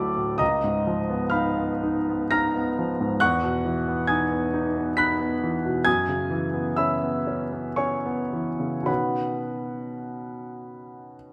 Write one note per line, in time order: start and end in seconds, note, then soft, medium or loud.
0.00 0.37 D2 soft
0.00 0.43 F#3 soft
0.00 0.43 A3 soft
0.00 0.43 E4 soft
0.00 0.36 D5 medium
0.00 0.43 E5 medium
0.00 0.36 A5 soft
0.00 0.43 B5 medium
0.00 0.40 D6 medium
0.00 0.42 E6 medium
0.17 0.40 A2 soft
0.38 3.17 C#2 soft
0.38 1.28 D#5 medium
0.38 1.28 A#5 medium
0.38 1.31 D#6 medium
0.64 1.00 G#2 soft
0.87 1.23 F3 soft
1.10 1.47 B3 soft
1.30 1.71 D#4 soft
1.30 2.27 F5 medium
1.30 2.27 B5 soft
1.30 2.30 F6 medium
1.56 1.97 B3 soft
1.83 2.23 D#4 soft
2.09 2.47 B3 soft
2.31 2.69 D#4 soft
2.31 3.17 A#5 medium
2.31 3.17 F6 medium
2.31 3.21 A#6 medium
2.56 2.91 B3 soft
2.79 3.13 F3 soft
3.00 3.22 G#2 soft
3.20 5.82 E2 soft
3.20 4.05 F#5 medium
3.20 4.05 C#6 medium
3.20 4.08 F#6 medium
3.43 3.78 B2 soft
3.65 4.00 E3 soft
3.88 4.23 B3 soft
4.07 4.45 D#4 soft
4.07 4.92 G#5 soft
4.07 4.93 D#6 soft
4.07 4.96 G#6 medium
4.31 4.66 B3 soft
4.54 4.89 D#4 soft
4.77 5.12 B3 soft
4.97 5.34 D#4 soft
4.97 5.82 B5 medium
4.97 5.83 F#6 medium
4.97 5.86 B6 medium
5.20 5.55 B3 soft
5.43 5.78 E3 soft
5.65 5.87 B2 soft
5.85 8.85 F#2 soft
5.85 6.74 G#5 medium
5.85 6.75 D#6 medium
5.85 6.78 G#6 medium
6.09 6.45 C#3 soft
6.30 6.69 E3 soft
6.54 6.93 B3 soft
6.76 7.18 C#4 soft
6.76 7.75 E5 soft
6.76 7.75 B5 soft
6.76 7.79 E6 medium
7.03 7.43 B3 soft
7.27 7.69 C#4 soft
7.53 7.95 B3 soft
7.76 8.21 C#4 soft
7.76 8.83 C#5 soft
7.76 8.83 G#5 soft
7.76 8.87 C#6 medium
8.06 8.49 B3 soft
8.33 8.77 E3 soft
8.60 8.88 C#3 soft
8.83 11.33 B2 soft
8.83 11.33 D#3 soft
8.83 11.33 B3 soft
8.83 11.33 C#4 soft
8.83 11.17 B5 medium
8.87 11.33 F#4 soft
8.87 11.14 B4 soft
8.87 11.13 F#5 soft